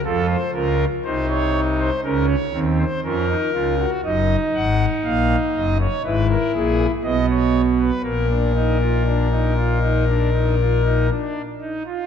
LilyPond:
<<
  \new Staff \with { instrumentName = "Pipe organ" } { \time 4/4 \key bes \minor \tempo 4 = 60 << { a'16 c''16 bes'8 c''16 des''8 c''16 bes'16 des''8 c''16 bes'4 | \key ees \minor ees''8 ges''8 f''8 ees''16 des''16 b'16 bes'16 gis'8 ees''16 des''8 b'16 | bes'2.~ bes'8 r8 | } \\ { f'8 f'8 ees'4 des'8 c'8 des'16 ees'16 f'16 ges'16 | ees'2 e'4 b4 | bes16 d'16 ees'16 f'16 d'16 ees'16 f'16 ees'16 d'16 ees'16 f'16 ees'16 d'8 ees'16 f'16 | } >> }
  \new Staff \with { instrumentName = "Pipe organ" } { \clef bass \time 4/4 \key bes \minor <f, f>8 <des, des>8 <c, c>4 <des, des>8 <ees, ees>8 <f, f>8 <des, des>8 | \key ees \minor <ges,, ges,>8 <aes,, aes,>8 <bes,, bes,>8 <ges,, ges,>8 <gis,, gis,>8 <bes,, bes,>8 <b,, b,>4 | <bes,, bes,>2.~ <bes,, bes,>8 r8 | }
>>